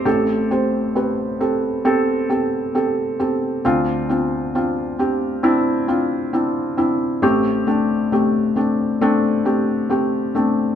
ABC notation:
X:1
M:4/4
L:1/8
Q:1/4=67
K:Am
V:1 name="Felt piano"
[CGA] [CGc] [CGB] [CGA] [CGA] [CGA] [CGA] [CGA] | [CDF] [CDF] [CDF] [CDG] [CDE] [CDF] [CDE] [CDE] | [A,CG] [A,CD] [A,CG] [A,CD] [A,CD] [A,CG] [A,CG] [A,CD] |]
V:2 name="Felt piano" clef=bass
[A,,,A,,]8 | [D,,D,]8 | [A,,,A,,]8 |]